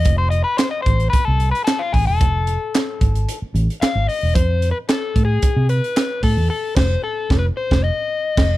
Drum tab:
CC |----------------|----------------|----------------|--x-----------x-|
HH |x-x-x-xxx-xxx-o-|x-x-x-xxx-xxx-o-|x-x-x-x-x-xxx-o-|----------------|
CP |----x-------x---|----x-------x---|----x-------x---|----------------|
SD |----o-------o---|----o-------o---|----o-------o---|--o---o--o----o-|
BD |o-----o-o-----o-|o-----o---------|o-----o-o-----o-|--o---o--o----o-|